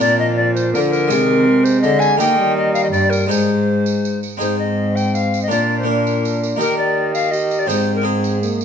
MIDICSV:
0, 0, Header, 1, 6, 480
1, 0, Start_track
1, 0, Tempo, 365631
1, 9, Time_signature, 3, 2, 24, 8
1, 11353, End_track
2, 0, Start_track
2, 0, Title_t, "Recorder"
2, 0, Program_c, 0, 74
2, 12, Note_on_c, 0, 74, 84
2, 234, Note_off_c, 0, 74, 0
2, 251, Note_on_c, 0, 75, 94
2, 468, Note_off_c, 0, 75, 0
2, 476, Note_on_c, 0, 74, 84
2, 701, Note_off_c, 0, 74, 0
2, 709, Note_on_c, 0, 72, 81
2, 952, Note_off_c, 0, 72, 0
2, 960, Note_on_c, 0, 70, 72
2, 1039, Note_off_c, 0, 70, 0
2, 1185, Note_on_c, 0, 70, 91
2, 2153, Note_on_c, 0, 72, 83
2, 2173, Note_off_c, 0, 70, 0
2, 2372, Note_off_c, 0, 72, 0
2, 2380, Note_on_c, 0, 75, 102
2, 2617, Note_on_c, 0, 80, 110
2, 2637, Note_off_c, 0, 75, 0
2, 2871, Note_off_c, 0, 80, 0
2, 2882, Note_on_c, 0, 79, 92
2, 3353, Note_off_c, 0, 79, 0
2, 3367, Note_on_c, 0, 75, 92
2, 3581, Note_off_c, 0, 75, 0
2, 3589, Note_on_c, 0, 77, 85
2, 3713, Note_off_c, 0, 77, 0
2, 3725, Note_on_c, 0, 75, 82
2, 3778, Note_off_c, 0, 75, 0
2, 3828, Note_on_c, 0, 74, 81
2, 4067, Note_on_c, 0, 70, 75
2, 4087, Note_off_c, 0, 74, 0
2, 4299, Note_off_c, 0, 70, 0
2, 4307, Note_on_c, 0, 72, 73
2, 5508, Note_off_c, 0, 72, 0
2, 5797, Note_on_c, 0, 72, 72
2, 6016, Note_off_c, 0, 72, 0
2, 6023, Note_on_c, 0, 75, 73
2, 6505, Note_on_c, 0, 79, 75
2, 6525, Note_off_c, 0, 75, 0
2, 6752, Note_on_c, 0, 77, 62
2, 6772, Note_off_c, 0, 79, 0
2, 7110, Note_off_c, 0, 77, 0
2, 7127, Note_on_c, 0, 75, 61
2, 7229, Note_off_c, 0, 75, 0
2, 7237, Note_on_c, 0, 74, 63
2, 7585, Note_off_c, 0, 74, 0
2, 7601, Note_on_c, 0, 72, 65
2, 7712, Note_off_c, 0, 72, 0
2, 7724, Note_on_c, 0, 70, 59
2, 8419, Note_off_c, 0, 70, 0
2, 8666, Note_on_c, 0, 70, 78
2, 8888, Note_off_c, 0, 70, 0
2, 8901, Note_on_c, 0, 74, 74
2, 9358, Note_off_c, 0, 74, 0
2, 9366, Note_on_c, 0, 77, 78
2, 9600, Note_on_c, 0, 75, 65
2, 9619, Note_off_c, 0, 77, 0
2, 9964, Note_on_c, 0, 74, 69
2, 9984, Note_off_c, 0, 75, 0
2, 10078, Note_on_c, 0, 72, 77
2, 10098, Note_off_c, 0, 74, 0
2, 10434, Note_off_c, 0, 72, 0
2, 10442, Note_on_c, 0, 70, 68
2, 10575, Note_on_c, 0, 68, 73
2, 10595, Note_off_c, 0, 70, 0
2, 11291, Note_off_c, 0, 68, 0
2, 11353, End_track
3, 0, Start_track
3, 0, Title_t, "Harpsichord"
3, 0, Program_c, 1, 6
3, 0, Note_on_c, 1, 58, 50
3, 0, Note_on_c, 1, 62, 52
3, 5, Note_on_c, 1, 65, 52
3, 19, Note_on_c, 1, 46, 59
3, 923, Note_off_c, 1, 46, 0
3, 994, Note_on_c, 1, 50, 50
3, 1388, Note_off_c, 1, 58, 0
3, 1398, Note_off_c, 1, 62, 0
3, 1405, Note_off_c, 1, 65, 0
3, 1413, Note_on_c, 1, 56, 55
3, 1415, Note_off_c, 1, 50, 0
3, 1421, Note_on_c, 1, 75, 55
3, 1442, Note_on_c, 1, 68, 56
3, 1462, Note_on_c, 1, 48, 63
3, 2361, Note_off_c, 1, 48, 0
3, 2411, Note_on_c, 1, 50, 63
3, 2823, Note_off_c, 1, 56, 0
3, 2827, Note_off_c, 1, 75, 0
3, 2838, Note_off_c, 1, 68, 0
3, 2839, Note_off_c, 1, 50, 0
3, 2848, Note_on_c, 1, 58, 58
3, 2869, Note_on_c, 1, 63, 54
3, 2885, Note_on_c, 1, 67, 57
3, 2899, Note_on_c, 1, 51, 62
3, 3797, Note_off_c, 1, 51, 0
3, 3850, Note_on_c, 1, 43, 56
3, 4263, Note_off_c, 1, 58, 0
3, 4274, Note_off_c, 1, 63, 0
3, 4282, Note_off_c, 1, 43, 0
3, 4283, Note_off_c, 1, 67, 0
3, 4291, Note_on_c, 1, 56, 45
3, 4309, Note_on_c, 1, 63, 49
3, 4323, Note_on_c, 1, 68, 47
3, 4337, Note_on_c, 1, 44, 46
3, 5495, Note_off_c, 1, 44, 0
3, 5723, Note_off_c, 1, 56, 0
3, 5732, Note_off_c, 1, 63, 0
3, 5739, Note_off_c, 1, 68, 0
3, 5741, Note_on_c, 1, 60, 43
3, 5756, Note_on_c, 1, 63, 39
3, 5774, Note_on_c, 1, 68, 47
3, 5790, Note_on_c, 1, 44, 46
3, 7162, Note_off_c, 1, 60, 0
3, 7170, Note_off_c, 1, 63, 0
3, 7178, Note_off_c, 1, 44, 0
3, 7179, Note_off_c, 1, 68, 0
3, 7193, Note_on_c, 1, 58, 41
3, 7206, Note_on_c, 1, 62, 45
3, 7230, Note_on_c, 1, 65, 42
3, 7245, Note_on_c, 1, 46, 45
3, 7644, Note_off_c, 1, 58, 0
3, 7659, Note_on_c, 1, 58, 46
3, 7663, Note_off_c, 1, 62, 0
3, 7679, Note_on_c, 1, 62, 50
3, 7680, Note_off_c, 1, 65, 0
3, 7696, Note_on_c, 1, 65, 45
3, 8600, Note_off_c, 1, 58, 0
3, 8616, Note_on_c, 1, 58, 46
3, 8620, Note_off_c, 1, 46, 0
3, 8620, Note_off_c, 1, 62, 0
3, 8629, Note_off_c, 1, 65, 0
3, 8634, Note_on_c, 1, 63, 46
3, 8651, Note_on_c, 1, 67, 40
3, 8663, Note_on_c, 1, 51, 51
3, 10028, Note_off_c, 1, 58, 0
3, 10037, Note_off_c, 1, 63, 0
3, 10042, Note_off_c, 1, 51, 0
3, 10046, Note_off_c, 1, 67, 0
3, 10060, Note_on_c, 1, 60, 46
3, 10074, Note_on_c, 1, 63, 43
3, 10094, Note_on_c, 1, 68, 50
3, 10110, Note_on_c, 1, 44, 48
3, 10508, Note_off_c, 1, 60, 0
3, 10524, Note_on_c, 1, 60, 48
3, 10528, Note_off_c, 1, 63, 0
3, 10544, Note_on_c, 1, 63, 52
3, 10546, Note_off_c, 1, 68, 0
3, 10562, Note_on_c, 1, 68, 53
3, 11353, Note_off_c, 1, 44, 0
3, 11353, Note_off_c, 1, 60, 0
3, 11353, Note_off_c, 1, 63, 0
3, 11353, Note_off_c, 1, 68, 0
3, 11353, End_track
4, 0, Start_track
4, 0, Title_t, "Trombone"
4, 0, Program_c, 2, 57
4, 20, Note_on_c, 2, 53, 62
4, 1448, Note_on_c, 2, 51, 66
4, 1468, Note_off_c, 2, 53, 0
4, 1933, Note_on_c, 2, 56, 75
4, 1953, Note_off_c, 2, 51, 0
4, 2896, Note_on_c, 2, 58, 76
4, 2916, Note_off_c, 2, 56, 0
4, 3120, Note_off_c, 2, 58, 0
4, 3128, Note_on_c, 2, 55, 80
4, 4330, Note_on_c, 2, 56, 59
4, 4350, Note_off_c, 2, 55, 0
4, 5544, Note_off_c, 2, 56, 0
4, 5786, Note_on_c, 2, 60, 54
4, 7234, Note_on_c, 2, 62, 54
4, 7253, Note_off_c, 2, 60, 0
4, 7703, Note_off_c, 2, 62, 0
4, 7711, Note_on_c, 2, 62, 59
4, 8654, Note_on_c, 2, 67, 52
4, 8674, Note_off_c, 2, 62, 0
4, 9601, Note_off_c, 2, 67, 0
4, 9609, Note_on_c, 2, 67, 61
4, 10081, Note_off_c, 2, 67, 0
4, 10090, Note_on_c, 2, 60, 51
4, 10555, Note_off_c, 2, 60, 0
4, 10563, Note_on_c, 2, 60, 60
4, 11036, Note_off_c, 2, 60, 0
4, 11049, Note_on_c, 2, 58, 57
4, 11353, Note_off_c, 2, 58, 0
4, 11353, End_track
5, 0, Start_track
5, 0, Title_t, "Cello"
5, 0, Program_c, 3, 42
5, 9, Note_on_c, 3, 46, 67
5, 973, Note_on_c, 3, 50, 69
5, 992, Note_off_c, 3, 46, 0
5, 1454, Note_on_c, 3, 48, 81
5, 1474, Note_off_c, 3, 50, 0
5, 2412, Note_on_c, 3, 50, 74
5, 2432, Note_off_c, 3, 48, 0
5, 2875, Note_off_c, 3, 50, 0
5, 2883, Note_on_c, 3, 51, 81
5, 3823, Note_off_c, 3, 51, 0
5, 3840, Note_on_c, 3, 43, 62
5, 4323, Note_on_c, 3, 44, 68
5, 4343, Note_off_c, 3, 43, 0
5, 5540, Note_off_c, 3, 44, 0
5, 5791, Note_on_c, 3, 44, 65
5, 7230, Note_on_c, 3, 46, 58
5, 7250, Note_off_c, 3, 44, 0
5, 8656, Note_off_c, 3, 46, 0
5, 8664, Note_on_c, 3, 51, 62
5, 10094, Note_on_c, 3, 44, 62
5, 10114, Note_off_c, 3, 51, 0
5, 11353, Note_off_c, 3, 44, 0
5, 11353, End_track
6, 0, Start_track
6, 0, Title_t, "Drums"
6, 14, Note_on_c, 9, 54, 85
6, 145, Note_off_c, 9, 54, 0
6, 741, Note_on_c, 9, 54, 50
6, 873, Note_off_c, 9, 54, 0
6, 983, Note_on_c, 9, 54, 47
6, 1114, Note_off_c, 9, 54, 0
6, 1224, Note_on_c, 9, 54, 45
6, 1355, Note_off_c, 9, 54, 0
6, 1449, Note_on_c, 9, 54, 90
6, 1580, Note_off_c, 9, 54, 0
6, 2172, Note_on_c, 9, 54, 56
6, 2303, Note_off_c, 9, 54, 0
6, 2413, Note_on_c, 9, 54, 47
6, 2544, Note_off_c, 9, 54, 0
6, 2646, Note_on_c, 9, 54, 48
6, 2778, Note_off_c, 9, 54, 0
6, 2889, Note_on_c, 9, 54, 85
6, 3020, Note_off_c, 9, 54, 0
6, 3613, Note_on_c, 9, 54, 51
6, 3745, Note_off_c, 9, 54, 0
6, 3857, Note_on_c, 9, 54, 45
6, 3988, Note_off_c, 9, 54, 0
6, 4102, Note_on_c, 9, 54, 50
6, 4233, Note_off_c, 9, 54, 0
6, 4347, Note_on_c, 9, 54, 87
6, 4479, Note_off_c, 9, 54, 0
6, 5067, Note_on_c, 9, 54, 54
6, 5198, Note_off_c, 9, 54, 0
6, 5318, Note_on_c, 9, 54, 50
6, 5450, Note_off_c, 9, 54, 0
6, 5553, Note_on_c, 9, 54, 42
6, 5684, Note_off_c, 9, 54, 0
6, 5790, Note_on_c, 9, 54, 75
6, 5922, Note_off_c, 9, 54, 0
6, 6523, Note_on_c, 9, 54, 48
6, 6654, Note_off_c, 9, 54, 0
6, 6762, Note_on_c, 9, 54, 45
6, 6893, Note_off_c, 9, 54, 0
6, 7008, Note_on_c, 9, 54, 42
6, 7139, Note_off_c, 9, 54, 0
6, 7237, Note_on_c, 9, 54, 78
6, 7368, Note_off_c, 9, 54, 0
6, 7966, Note_on_c, 9, 54, 45
6, 8097, Note_off_c, 9, 54, 0
6, 8206, Note_on_c, 9, 54, 45
6, 8337, Note_off_c, 9, 54, 0
6, 8447, Note_on_c, 9, 54, 46
6, 8578, Note_off_c, 9, 54, 0
6, 8673, Note_on_c, 9, 54, 82
6, 8804, Note_off_c, 9, 54, 0
6, 9383, Note_on_c, 9, 54, 47
6, 9514, Note_off_c, 9, 54, 0
6, 9627, Note_on_c, 9, 54, 45
6, 9759, Note_off_c, 9, 54, 0
6, 9861, Note_on_c, 9, 54, 44
6, 9992, Note_off_c, 9, 54, 0
6, 10101, Note_on_c, 9, 54, 74
6, 10232, Note_off_c, 9, 54, 0
6, 10818, Note_on_c, 9, 54, 49
6, 10949, Note_off_c, 9, 54, 0
6, 11068, Note_on_c, 9, 54, 42
6, 11199, Note_off_c, 9, 54, 0
6, 11300, Note_on_c, 9, 54, 47
6, 11353, Note_off_c, 9, 54, 0
6, 11353, End_track
0, 0, End_of_file